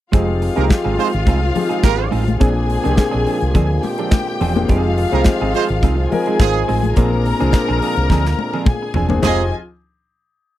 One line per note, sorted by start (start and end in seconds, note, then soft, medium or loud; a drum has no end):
0.12 0.48 F1 medium
0.12 2.40 D#3 medium
0.12 0.43 F3 medium
0.12 2.40 F3 medium
0.12 0.30 G#3 medium
0.12 9.06 G#3 medium
0.12 0.43 C4 medium
0.12 0.28 C4 medium
0.12 9.06 C4 medium
0.12 0.43 D#4 medium
0.12 0.28 D#4 medium
0.12 2.37 F4 medium
0.12 9.06 F4 medium
0.12 0.43 G4 medium
0.12 0.43 G#4 medium
0.12 0.27 G#4 medium
0.12 2.37 F5 loud
0.12 kick loud
0.12 closed hi-hat medium
0.29 muted clean electric guitar stroke soft
0.42 muted clean electric guitar stroke soft
0.42 open hi-hat medium
0.56 0.68 C2 medium
0.56 1.25 F3 medium
0.56 0.69 G#3 soft
0.56 0.65 A#3 medium
0.56 1.25 C4 medium
0.56 0.69 C4 soft
0.56 1.25 D#4 medium
0.56 0.69 D#4 medium
0.56 1.25 G4 medium
0.56 0.65 G4 medium
0.56 0.69 G#4 medium
0.56 1.25 G#4 loud
0.56 0.65 A#4 medium
0.56 closed hi-hat soft
0.69 kick loud
0.69 snare loud
0.69 closed hi-hat medium
0.69 high conga medium
0.85 0.96 G#1 medium
0.85 0.97 G#3 medium
0.85 0.97 C4 medium
0.85 0.97 D#4 medium
0.85 0.98 G#4 medium
0.98 1.12 G#3 medium
0.98 1.08 G#3 medium
0.98 1.12 C4 medium
0.98 1.12 D#4 medium
0.98 1.08 F4 medium
0.98 1.13 G#4 medium
0.98 1.08 C5 medium
0.98 open hi-hat medium
1.13 1.25 G#1 medium
1.13 muted clean electric guitar stroke soft
1.13 closed hi-hat soft
1.26 1.50 C2 medium
1.26 1.44 G#3 medium
1.26 1.43 C4 medium
1.26 1.42 D#4 medium
1.26 1.42 G#4 medium
1.26 kick loud
1.26 closed hi-hat medium
1.26 muted conga soft
1.43 muted clean electric guitar stroke soft
1.54 2.14 F3 medium
1.54 2.15 C4 medium
1.54 2.15 D#4 medium
1.54 2.15 G4 medium
1.54 2.15 G#4 medium
1.54 muted clean electric guitar stroke soft
1.54 open hi-hat medium
1.54 muted conga medium
1.54 low conga medium
1.70 1.83 G#3 medium
1.70 1.83 C4 medium
1.70 1.83 D#4 medium
1.70 1.82 G#4 medium
1.70 closed hi-hat soft
1.83 2.07 G#1 medium
1.83 2.07 A#3 loud
1.83 2.07 G4 loud
1.83 2.07 A#4 loud
1.83 kick loud
1.83 snare loud
1.83 closed hi-hat medium
1.83 high conga medium
1.98 muted clean electric guitar stroke medium
2.11 2.36 A1 medium
2.11 2.29 G#3 medium
2.11 2.26 C4 medium
2.11 2.26 D#4 medium
2.11 2.26 G#4 medium
2.11 open hi-hat medium
2.27 muted clean electric guitar stroke soft
2.27 closed hi-hat soft
2.27 high conga medium
2.39 2.76 A#1 medium
2.39 2.70 A#2 medium
2.39 4.67 D3 medium
2.39 2.58 F3 medium
2.39 2.70 A#3 medium
2.39 4.67 A#3 medium
2.39 2.71 C4 medium
2.39 2.56 C4 medium
2.39 2.55 D4 medium
2.39 2.71 D4 medium
2.39 2.71 G#4 loud
2.39 2.54 G#4 medium
2.39 3.81 G#4 medium
2.39 3.81 G#5 medium
2.39 kick loud
2.39 closed hi-hat medium
2.39 muted conga soft
2.55 muted clean electric guitar stroke soft
2.69 muted clean electric guitar stroke soft
2.69 open hi-hat medium
2.83 2.96 C2 medium
2.83 3.63 A#2 medium
2.83 2.95 F3 medium
2.83 3.63 A#3 medium
2.83 3.63 C4 medium
2.83 2.96 C4 soft
2.83 2.96 D4 medium
2.83 3.63 D4 medium
2.83 2.91 G4 medium
2.83 2.96 G#4 medium
2.83 closed hi-hat soft
2.92 3.67 G#4 medium
2.97 kick loud
2.97 snare loud
2.97 closed hi-hat medium
2.97 high conga medium
3.11 3.25 A#1 medium
3.11 3.24 F3 medium
3.11 3.25 C4 medium
3.11 3.26 D4 medium
3.11 3.26 G#4 medium
3.26 3.40 F3 medium
3.26 3.40 C4 medium
3.26 3.40 D4 medium
3.26 3.39 G#4 medium
3.26 open hi-hat medium
3.41 3.53 C2 medium
3.41 muted clean electric guitar stroke soft
3.41 closed hi-hat soft
3.54 3.78 D2 medium
3.54 3.72 F3 medium
3.54 3.70 C4 medium
3.54 3.69 D4 medium
3.54 3.68 G#4 medium
3.54 kick loud
3.54 closed hi-hat medium
3.54 muted conga medium
3.54 low conga medium
3.70 muted clean electric guitar stroke soft
3.83 4.68 G4 medium
3.83 4.68 G5 medium
3.83 muted clean electric guitar stroke soft
3.83 open hi-hat medium
3.83 muted conga medium
3.98 4.12 F3 medium
3.98 4.11 C4 soft
3.98 4.11 D4 medium
3.98 4.11 G#4 medium
3.98 closed hi-hat soft
4.11 kick loud
4.11 snare loud
4.11 closed hi-hat medium
4.11 high conga medium
4.27 muted clean electric guitar stroke soft
4.41 4.63 E1 loud
4.41 4.58 F3 medium
4.41 4.55 C4 medium
4.41 4.55 D4 medium
4.41 4.54 G#4 medium
4.41 open hi-hat medium
4.55 4.65 A#2 medium
4.55 4.65 A#3 medium
4.55 4.65 C4 medium
4.55 4.65 D4 medium
4.55 4.66 G#4 medium
4.55 muted clean electric guitar stroke soft
4.55 closed hi-hat soft
4.55 high conga medium
4.68 5.04 F1 medium
4.68 6.94 D#3 medium
4.68 4.98 F3 medium
4.68 6.94 F3 medium
4.68 4.90 G#3 medium
4.68 4.99 C4 medium
4.68 4.84 C4 medium
4.68 4.99 D#4 medium
4.68 4.84 D#4 medium
4.68 6.09 F4 medium
4.68 4.99 G4 medium
4.68 4.83 G#4 medium
4.68 4.99 G#4 loud
4.68 6.08 F5 loud
4.68 kick loud
4.68 closed hi-hat medium
4.68 muted conga soft
4.84 muted clean electric guitar stroke soft
4.98 muted clean electric guitar stroke soft
4.98 open hi-hat medium
5.11 5.23 C2 medium
5.11 5.80 F3 medium
5.11 5.26 G#3 medium
5.11 5.21 A#3 medium
5.11 5.81 C4 medium
5.11 5.26 C4 medium
5.11 5.81 D#4 medium
5.11 5.25 D#4 medium
5.11 5.81 G4 medium
5.11 5.21 G4 medium
5.11 5.81 G#4 loud
5.11 5.25 G#4 medium
5.11 5.21 A#4 medium
5.11 closed hi-hat soft
5.24 kick loud
5.24 snare loud
5.24 closed hi-hat medium
5.24 high conga medium
5.41 5.52 G#1 medium
5.41 5.54 G#3 medium
5.41 5.54 C4 medium
5.41 5.55 D#4 medium
5.41 5.56 G#4 medium
5.54 5.64 G#3 medium
5.54 5.68 G#3 medium
5.54 5.69 C4 medium
5.54 5.69 D#4 medium
5.54 5.64 F4 medium
5.54 5.69 G#4 medium
5.54 5.64 C5 medium
5.54 open hi-hat medium
5.69 5.81 G#1 medium
5.69 muted clean electric guitar stroke soft
5.69 closed hi-hat soft
5.83 6.06 C2 medium
5.83 6.00 G#3 medium
5.83 5.98 C4 medium
5.83 5.98 D#4 medium
5.83 5.97 G#4 medium
5.83 kick loud
5.83 closed hi-hat medium
5.83 muted conga medium
5.98 muted clean electric guitar stroke medium
6.11 6.70 F3 medium
6.11 6.70 C4 medium
6.11 6.71 D#4 medium
6.11 6.95 G#4 medium
6.11 6.71 G#4 medium
6.11 6.71 A#4 medium
6.11 6.95 G#5 medium
6.11 muted clean electric guitar stroke medium
6.11 open hi-hat medium
6.11 muted conga soft
6.11 low conga medium
6.26 6.40 G#3 soft
6.26 6.40 C4 medium
6.26 6.39 D#4 medium
6.26 6.39 G#4 medium
6.26 closed hi-hat soft
6.40 6.62 G#1 medium
6.40 6.63 F3 medium
6.40 6.63 D#4 loud
6.40 6.63 G#4 loud
6.40 kick loud
6.40 snare loud
6.40 closed hi-hat medium
6.40 high conga medium
6.55 muted clean electric guitar stroke soft
6.68 6.92 A1 medium
6.68 6.85 G#3 medium
6.68 6.84 C4 medium
6.68 6.82 D#4 medium
6.68 6.82 G#4 medium
6.68 open hi-hat medium
6.83 muted clean electric guitar stroke soft
6.83 closed hi-hat soft
6.83 high conga medium
6.96 7.32 A#1 medium
6.96 7.26 A#2 medium
6.96 9.06 D3 medium
6.96 7.14 F3 medium
6.96 7.26 A#3 medium
6.96 9.06 A#3 medium
6.96 7.26 C4 medium
6.96 7.13 C4 medium
6.96 7.26 D4 medium
6.96 7.12 D4 medium
6.96 7.27 G#4 loud
6.96 7.12 G#4 medium
6.96 8.63 A#4 medium
6.96 8.63 A#5 loud
6.96 kick loud
6.96 closed hi-hat medium
6.96 muted conga soft
7.13 muted clean electric guitar stroke soft
7.26 muted clean electric guitar stroke medium
7.26 open hi-hat medium
7.39 7.52 C2 medium
7.39 8.18 A#2 medium
7.39 7.52 F3 medium
7.39 8.18 A#3 medium
7.39 8.18 C4 medium
7.39 7.53 C4 medium
7.39 8.18 D4 medium
7.39 7.53 D4 medium
7.39 7.52 G#4 medium
7.39 8.18 G#4 medium
7.39 closed hi-hat soft
7.52 kick loud
7.52 snare loud
7.52 closed hi-hat medium
7.52 high conga medium
7.68 7.80 A#1 medium
7.68 7.80 F3 medium
7.68 7.81 C4 medium
7.68 7.81 D4 medium
7.68 7.81 G#4 medium
7.81 7.95 F3 medium
7.81 7.95 C4 medium
7.81 7.96 D4 medium
7.81 7.96 G#4 medium
7.81 open hi-hat medium
7.96 8.08 C2 medium
7.96 muted clean electric guitar stroke soft
7.96 closed hi-hat soft
8.10 8.33 D2 medium
8.10 8.28 F3 medium
8.10 8.26 C4 medium
8.10 8.25 D4 medium
8.10 8.25 G#4 medium
8.10 kick loud
8.10 snare medium
8.10 muted conga soft
8.10 low conga medium
8.25 muted clean electric guitar stroke medium
8.25 snare medium
8.39 muted clean electric guitar stroke soft
8.39 muted conga medium
8.54 8.66 F3 medium
8.54 8.66 C4 medium
8.54 8.66 D4 medium
8.54 8.66 G#4 medium
8.54 high tom medium
8.66 9.23 G#4 medium
8.66 9.23 G#5 medium
8.66 kick loud
8.66 mid tom medium
8.66 high conga medium
8.82 muted clean electric guitar stroke medium
8.94 9.18 E1 medium
8.94 9.12 F3 medium
8.94 9.10 C4 medium
8.94 9.10 D4 medium
8.94 9.09 G#4 medium
8.94 floor tom loud
9.09 9.19 A#2 medium
9.09 9.19 A#3 medium
9.09 9.19 C4 medium
9.09 9.19 D4 medium
9.09 9.20 G#4 loud
9.09 muted clean electric guitar stroke soft
9.09 floor tom medium
9.09 high conga medium
9.22 9.50 F1 medium
9.22 9.49 D#3 medium
9.22 9.49 F3 medium
9.22 9.43 F3 medium
9.22 9.50 G#3 medium
9.22 9.41 G#3 medium
9.22 9.49 C4 medium
9.22 9.42 C4 medium
9.22 9.49 D#4 medium
9.22 9.43 D#4 medium
9.22 9.42 D#4 medium
9.22 9.50 F4 medium
9.22 9.51 F4 medium
9.22 9.49 G4 medium
9.22 9.49 G#4 medium
9.22 9.43 G#4 loud
9.22 9.42 G#4 medium
9.22 9.51 D#5 medium
9.22 9.51 G#5 loud
9.22 snare loud
9.22 floor tom medium
9.22 crash medium
9.22 muted conga medium